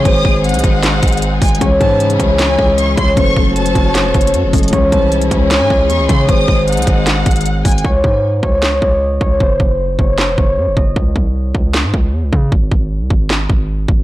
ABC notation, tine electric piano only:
X:1
M:4/4
L:1/8
Q:1/4=154
K:C#m
V:1 name="Tine electric piano"
[D,G,^B,G^B]8 | [E,G,CGc]8 | [F,A,CAc]6- [F,A,CAc] [F,A,CAc] | [E,G,CGc]8 |
[D,G,^B,G^B]8 | z8 | z8 | z8 |
z8 |]